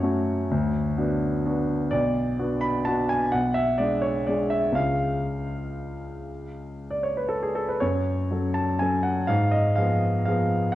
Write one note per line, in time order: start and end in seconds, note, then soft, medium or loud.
0.00 0.53 F#2 medium
0.00 0.02 A3 soft
0.00 0.47 A3 soft
0.00 0.03 C#4 soft
0.00 0.47 C#4 soft
0.00 0.03 F#4 soft
0.00 0.47 F#4 soft
0.00 1.91 C#5 medium
0.00 0.53 F#5 medium
0.51 0.96 D2 medium
0.98 1.42 B3 soft
0.98 1.42 D4 soft
0.98 1.42 F#4 soft
1.46 1.88 B3 soft
1.46 1.88 D4 soft
1.46 1.89 F#4 soft
1.91 2.37 B1 medium
1.91 2.62 D5 medium
2.39 2.83 B3 soft
2.39 2.84 D4 soft
2.39 2.84 F#4 soft
2.61 2.86 B5 medium
2.85 3.29 B3 soft
2.85 3.29 D4 soft
2.85 3.29 F#4 soft
2.85 3.10 A5 medium
3.09 3.32 G#5 medium
3.32 3.78 B1 soft
3.32 3.55 F#5 medium
3.54 3.78 E5 medium
3.78 4.24 G#3 soft
3.78 4.24 D4 soft
3.78 4.24 G#4 soft
3.78 4.02 D5 medium
4.02 4.27 C#5 medium
4.27 4.72 G#3 soft
4.27 4.74 D4 soft
4.27 4.74 G#4 soft
4.27 4.52 D5 medium
4.50 4.76 E5 medium
4.72 7.76 C#2 soft
4.72 7.76 G#3 soft
4.72 7.77 C#4 soft
4.72 7.41 G#4 soft
4.72 6.91 F5 medium
6.90 7.04 D5 medium
7.03 7.17 C#5 medium
7.17 7.30 B4 soft
7.28 7.43 A4 medium
7.42 7.56 G#4 soft
7.55 7.69 A4 medium
7.68 7.81 B4 medium
7.80 8.29 F#2 soft
7.80 8.55 C#5 medium
8.31 8.76 F#3 soft
8.31 8.76 C#4 soft
8.31 8.77 A4 soft
8.54 8.79 A5 medium
8.79 9.24 F#3 soft
8.79 9.25 C#4 soft
8.79 9.25 A4 soft
8.79 9.04 G#5 medium
9.03 9.28 F#5 medium
9.27 9.76 G#2 medium
9.27 9.52 F5 medium
9.51 9.77 D#5 medium
9.76 10.23 F3 soft
9.76 10.23 B3 soft
9.76 10.23 G#4 soft
9.76 10.24 F5 medium
10.25 10.70 F3 soft
10.25 10.70 B3 soft
10.25 10.70 G#4 soft
10.25 10.73 F5 medium